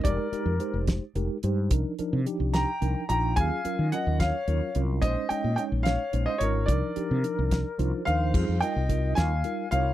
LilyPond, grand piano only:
\new Staff \with { instrumentName = "Grand piano" } { \time 6/8 \key ees \mixolydian \tempo 4. = 72 d''4. r4. | r4. bes''4 bes''8 | aes''4 ges''8 f''4 r8 | ees''8 g''8 g''8 f''8. ees''16 des''8 |
d''2~ d''8 f''8~ | \key f \minor f''8 g''4 aes''4 f''8 | }